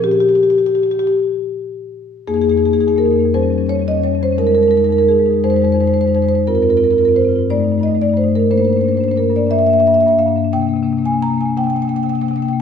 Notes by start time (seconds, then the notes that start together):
0.00 A#2 F3 C#4 G4
0.11 G4
0.20 G4
0.29 G4
0.35 G4
0.43 G4
0.50 G4
0.58 G4
0.66 G4
0.75 G4
0.83 G4
0.91 G4
0.99 G4
1.07 G4
2.27 F2 A#3 D#4 G#4
2.34 F2 A#3 D#4 G#4
2.42 A#3 D#4 G#4
2.48 F2 A#3 D#4 G#4
2.57 F2 A#3 D#4 G#4
2.65 F2 A#3 D#4 G#4
2.73 A#3 D#4 G#4
2.78 F2 A#3 G#4
2.82 D#4
2.87 F2 A#3 D#4 G#4
2.96 F2 A#3 D#4 A#4
3.04 F2 A#3 D#4
3.11 A#3 D#4
3.16 F2 A#3
3.20 D#4
3.25 F2
3.34 F2 G3 C#4 C5
3.43 F2 G3 C#4
3.50 G3 C#4
3.57 F2 G3 C#4
3.67 F2 G3 C#4 C#5
3.75 F2 C#4
3.79 G3 C#4
3.87 F2 G3 C#4 D#5
3.96 F2 G3 C#4
4.03 G3 C#4 C#5
4.11 F2 G3
4.15 C#4
4.20 F2 G3 C#4 C5
4.31 F2 C#4
4.38 F2 G#3 D#4 A#4
4.45 F2 G#3 D#4 A#4
4.52 G#3 D#4 A#4
4.58 F2 D#4
4.62 G#3 A#4
4.68 F2 G#3 D#4 A#4
4.75 G#3 D#4 A#4
4.79 F2 D#4
4.84 G#3 A#4
4.89 F2 D#4 A#4
4.95 G#3 D#4 A#4
5.00 F2 G#3
5.04 D#4
5.08 F2 G#3 D#4 G#4
5.19 F2 G#3 D#4
5.26 F2 G#3 D#4
5.33 G#3 D#4
5.44 F2 G#3 D#4 C5
5.50 F2 D#4 C5
5.54 G#3 C5
5.60 G#3 D#4
5.64 F2 D#4 C5
5.71 F2 G#3 C5
5.76 D#4
5.80 F2 G#3 D#4 C5
5.87 G#3 C5
5.93 F2 D#4 C5
5.98 G#3 D#4 C5
6.05 F2 G#3 C5
6.09 D#4
6.15 F2 G#3 D#4 C5
6.22 F2 G#3 D#4 C5
6.29 C5
6.33 F2 G#3 D#4 C5
6.47 G2 C4 F4 A#4
6.55 G2 C4 F4 A#4
6.62 C4 F4 A#4
6.69 G2 C4 F4 A#4
6.77 G2 C4 F4 A#4
6.84 C4 F4 A#4
6.91 G2 C4 F4 A#4
6.98 C4 F4 A#4
7.03 G2 A#4
7.07 C4 F4
7.12 G2 F4
7.16 C4 C5
7.21 G2 C4 F4
7.29 G2 C4 F4
7.36 C4 F4
7.50 G2 A3 D#4 D5
7.57 G2 A3 D#4
7.64 D#4
7.68 G2 A3 D#4
7.78 G2 A3 D#4
7.83 A3 D#5
7.88 G2 D#4
7.95 A3 D#4
8.02 G2 A3 D#4 D5
8.09 A3 D#4
8.14 G2 D#4 C5
8.21 G2 A3 D#4
8.29 A3 D#4
8.35 G2 A3 A#4
8.39 D#4
8.51 G2 A#3 D4 C5
8.57 G2 A#3 D4 C5
8.65 A#3 D4 C5
8.70 G2 C5
8.76 G2 A#3 D4
8.81 D4 C5
8.85 G2 A#3 C5
8.92 A#3 D4
8.97 G2 D4 C5
9.03 A#3 C5
9.08 G2 A#3 D4 C5
9.16 G2 A#3 D4 A#4
9.23 D4
9.28 G2 A#3 D4
9.36 G2 A#3 D4 D5
9.45 A#3 D4
9.49 G2 E5
9.53 A#3 D4
9.58 G2 A#3 D4 E5
9.66 G2 A#3 D4 E5
9.73 E5
9.78 G2 A#3 D4 E5
9.87 G2 A#3 D4 E5
9.94 G2 A#3 D4 E5
10.00 A#3 D4 E5
10.07 G2 A#3 E5
10.12 D4
10.17 G2 A#3 D4 F5
10.26 G2 A#3 D4
10.36 G2 A#3 D4
10.44 D4
10.53 C3 A#3 D4 G5
10.60 C3 A#3 D4
10.67 A#3 D4
10.73 C3 A#3 D4
10.83 C3 A#3 D4
10.90 C3 A#3 D4
10.97 A#3 D4
11.03 C3 D4 G#5
11.07 A#3
11.12 C3 A#3 D4
11.19 C3 A#3 D4 A#5
11.26 A#3 D4
11.31 C3 D4
11.38 C3 A#3 G#5
11.42 A#3 D4
11.49 D4
11.57 C3 A#3 D4 G5
11.64 C3 A#3 D4 G5
11.70 D4 G5
11.74 C3 A#3 G5
11.80 A#3 D4 G5
11.85 C3 D4
11.89 A#3 G5
11.95 C3 A#3 D4 G5
12.03 C3 A#3 D4 G5
12.09 C3 D4 G5
12.14 A#3 G5
12.19 C3 A#3 D4 G5
12.26 A#3 D4 G5
12.31 C3 D4
12.36 A#3 G5
12.40 C3 D4 G5
12.45 C3 A#3 G5
12.50 A#3 D4